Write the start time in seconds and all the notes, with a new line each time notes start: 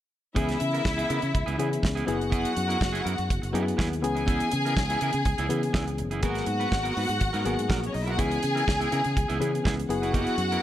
0.35 C#2 E3 B3 C#4 E4 G#4 E5, kick, closed hi-hat
0.49 snare, closed hi-hat
0.60 C#3, muted clean electric guitar stroke, closed hi-hat
0.73 B3 E4 A#4, closed hi-hat
0.85 C#2, muted clean electric guitar stroke, kick, snare
0.97 B3 E4 G#4, closed hi-hat
1.09 C#3 B3 E4 A#4, closed hi-hat
1.22 C#3, muted clean electric guitar stroke, closed hi-hat
1.33 C#2, muted clean electric guitar stroke, kick, closed hi-hat
1.46 C#2 B3 E4 G#4, closed hi-hat
1.58 C#3 E3 B3 C#4 E4 G#4, closed hi-hat
1.71 muted clean electric guitar stroke, closed hi-hat
1.82 C#2, muted clean electric guitar stroke, kick, snare
1.95 B3 E4 G#4, closed hi-hat
2.06 F#1 F#3 B3 E4 F#4 G#4 F#5, closed hi-hat
2.19 muted clean electric guitar stroke, closed hi-hat
2.30 B3 E4 G#4, kick, closed hi-hat
2.45 closed hi-hat
2.57 F#2, closed hi-hat
2.68 B3 E4 A#4, closed hi-hat
2.80 F#1, muted clean electric guitar stroke, kick, snare
2.93 B3 E4 G#4, closed hi-hat
3.03 F#2 B3 E4 A#4, closed hi-hat
3.16 F#2, muted clean electric guitar stroke, closed hi-hat
3.30 F#1, kick, closed hi-hat
3.42 F#1, muted clean electric guitar stroke, closed hi-hat
3.53 F#2 F#3 B3 E4 G#4, closed hi-hat
3.66 muted clean electric guitar stroke, closed hi-hat
3.77 D#2 B3 E4 G#4, kick, snare
3.90 muted clean electric guitar stroke, closed hi-hat
4.02 C#2 E3 B3 C#4 G#4 G#5, muted clean electric guitar stroke, closed hi-hat
4.15 B3 E4 G#4, closed hi-hat
4.26 B3 E4 G#4, kick, closed hi-hat
4.40 closed hi-hat
4.51 C#3, muted clean electric guitar stroke, closed hi-hat
4.65 B3 E4 A#4, closed hi-hat
4.77 C#2, kick, snare
4.89 B3 E4 G#4, closed hi-hat
5.01 C#3 B3 E4 A#4, closed hi-hat
5.13 C#3, muted clean electric guitar stroke, closed hi-hat
5.25 C#2, muted clean electric guitar stroke, kick, closed hi-hat
5.38 C#2 B3 E4 G#4, closed hi-hat
5.49 C#3 E3 B3 C#4 E4 G#4, closed hi-hat
5.63 muted clean electric guitar stroke, closed hi-hat
5.73 C#2 B3 E4 G#4, kick, snare
5.87 muted clean electric guitar stroke, closed hi-hat
5.98 F#1, muted clean electric guitar stroke, closed hi-hat
6.11 B3 E4 G#4, closed hi-hat
6.21 G#1 F#3 A#3 B3 F#4 G#4 A#4 F#5, kick, closed hi-hat
6.35 snare, closed hi-hat
6.46 G#2, muted clean electric guitar stroke, closed hi-hat
6.60 B3 F#4 B4, closed hi-hat
6.71 G#1, muted clean electric guitar stroke, kick, snare
6.83 B3 F#4 A#4, closed hi-hat
6.96 G#2 B3 F#4 B4, open hi-hat
7.08 G#2, muted clean electric guitar stroke, closed hi-hat
7.20 G#1, muted clean electric guitar stroke, kick, closed hi-hat
7.33 G#2 B3 F#4 A#4, closed hi-hat
7.44 G#1 F#3 A#3 B3 F#4 G#4 A#4, closed hi-hat
7.57 G#2, muted clean electric guitar stroke, closed hi-hat
7.68 A#1 B3 F#4 A#4, kick, snare
7.83 C#4 C#5, muted clean electric guitar stroke, closed hi-hat
7.93 B1 D#4 D#5, muted clean electric guitar stroke, open hi-hat
8.03 E4 A#4 E5
8.07 B3 F#4 F#5, closed hi-hat
8.17 C#2 E3 B3 C#4 E4 G#4 G#5, kick, closed hi-hat
8.31 closed hi-hat
8.43 C#3, closed hi-hat
8.55 B3 E4 A#4, closed hi-hat
8.66 C#2, muted clean electric guitar stroke, kick, snare
8.79 B3 E4 G#4, closed hi-hat
8.91 C#3 B3 E4 A#4, closed hi-hat
9.04 C#3, muted clean electric guitar stroke, closed hi-hat
9.15 C#2, muted clean electric guitar stroke, kick, closed hi-hat
9.28 C#2 B3 E4 G#4, closed hi-hat
9.39 C#3 E3 B3 C#4 E4 G#4, closed hi-hat
9.53 muted clean electric guitar stroke, closed hi-hat
9.64 C#2 B3 E4 G#4, kick, snare
9.77 muted clean electric guitar stroke, closed hi-hat
9.89 F#1 F#3 B3 E4 F#4 G#4 F#5, muted clean electric guitar stroke, closed hi-hat
10.02 B3 E4 G#4, closed hi-hat
10.13 B3 E4 G#4, kick, closed hi-hat
10.27 closed hi-hat
10.38 F#2, muted clean electric guitar stroke, closed hi-hat
10.52 B3 E4 A#4, closed hi-hat